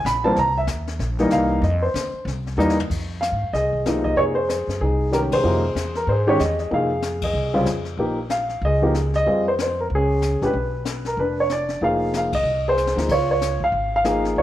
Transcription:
0.05 A#1 B5, snare, hi-hat pedal
0.24 E3 G3 A#3 C4 A5
0.36 C2 A#5, brush sweep, snare
0.58 E5
0.67 D#2, snare, hi-hat pedal
0.87 snare
0.99 A#1, brush sweep, snare
1.19 E3 G3 A#3 D#4, snare
1.30 C2 F5, snare, hi-hat pedal
1.62 F2 D#5, brush sweep, snare
1.82 C5
1.94 D#2, snare, hi-hat pedal
2.14 muted upright bass stroke
2.25 C2, brush sweep, snare
2.47 snare
2.57 E2 E3 G3 A#3 D#4, hi-hat pedal
2.70 snare
2.80 floor tom
2.90 F2, brush sweep, kick, crash
3.21 F5, snare, hi-hat pedal
3.32 G#2
3.43 F#2
3.53 C2 G#4 D#5, brush sweep, snare
3.73 kick
3.86 C3 F3 A#3 D#4, snare, hi-hat pedal
4.04 D#5, kick
4.16 F2 G#4 C#5, brush sweep
4.35 C5
4.49 C5, snare, hi-hat pedal
4.68 F#2, snare
4.81 C2 D#4 G#4, brush sweep
5.11 D#3 G#3 C#4 G4 A#4, snare, hi-hat pedal
5.32 G#4 C5, kick, ride
5.43 F2 C3 F3 A#3 D#4, brush sweep
5.75 E2, snare, hi-hat pedal
5.95 A#4, snare
6.07 G#2 C5, brush sweep
6.12 G#4
6.27 D#3 G#3 C#4 G4 C#5
6.39 E2 D#5, snare, hi-hat pedal
6.59 D#5, snare
6.71 F2 C3 F3 A#3 D#4 F5, brush sweep
6.76 G#4
7.02 snare, hi-hat pedal
7.22 G#4 D#5, kick, ride
7.34 C2, brush sweep
7.54 C#3 G3 C4 F4
7.65 F2, snare, hi-hat pedal
7.85 snare
7.97 A#1 F3 A#3 D#4 G4, brush sweep
8.30 F5, snare, hi-hat pedal
8.49 snare
8.62 C#2 D#5, brush sweep
8.66 G#4
8.82 F3 A#3 D#4 G4
8.94 snare, hi-hat pedal
9.14 D#5, snare
9.26 F2 G3 C4 F4 G#4, brush sweep
9.48 C5
9.59 C5, snare, hi-hat pedal
9.81 A#4
9.90 C#2, brush sweep
9.95 C#4 G#4
10.22 snare, hi-hat pedal
10.42 A#1 G#3 C#4 D4 G4 B4, snare
10.53 B1, brush sweep
10.85 snare, hi-hat pedal
11.05 A#4, snare
11.17 F1 D4 B4, brush sweep
11.40 C#5
11.50 D5, snare, hi-hat pedal
11.69 snare
11.81 F1 F3 A#3 D#4 G#4 F5, brush sweep
12.14 F5, snare, hi-hat pedal
12.33 D#5, kick, ride
12.43 C2, brush sweep
12.68 G#4 C5
12.77 snare, hi-hat pedal
12.87 snare
12.96 D2 F3 A#3 D#4 G#4, snare
13.09 C#2 F4 C#5, brush sweep, kick, crash
13.31 C#5
13.41 snare, hi-hat pedal
13.60 G#2 F5, kick
13.72 G#1, brush sweep
13.96 F5
14.04 F3 A#3 D#4 G#4, snare, hi-hat pedal
14.25 snare
14.36 C#2 F4 C#5, brush sweep

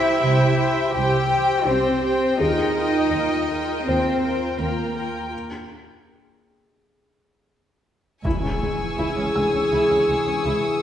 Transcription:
Already playing: E4 G4 C5 E5 G5 E6 G6
0.20 C2 G4 C5 G5
0.56 G4 C5 G5
0.93 C2 G4 C5 G5
1.29 G4 C5 G5
1.66 C2 C4 G4 C5 G5
2.02 G4 C5 G5
2.39 D#2 D#4 F4 G#4 A#4 D#5 G5
2.76 F4 A#4 G5
3.12 D#2 F4 A#4 G5
3.49 F4 A#4 G5
3.85 D#2 C4 F4 A#4 C5 G5
4.22 F4 A#4 G5
4.59 D#2 A#3 F4 A#4 G5
4.95 F4 A#4 G5
8.24 C#2 E3 E4 G#4 G#5 C#6 E6, impact
8.43 C#2 C#4
8.61 C#2 G#3
8.98 C#2 E4 D#6
9.17 C#2 C#4
9.35 C#2 G#3 E6
9.53 C#2 C#4
9.72 C#2 E4
9.90 C#2 C#4
10.08 C#2 G#3
10.27 C#2 C#4
10.44 C#2 E4

